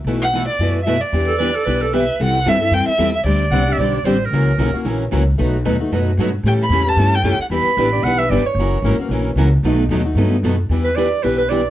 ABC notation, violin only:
X:1
M:4/4
L:1/8
Q:"Swing" 1/4=225
K:Em
V:1 name="Violin"
z f2 d2 z e d- | d6 e2 | f2 e2 g e2 e | d6 z2 |
z8 | z8 | g b2 a2 g2 f | b4 z4 |
z8 | z8 | z8 |]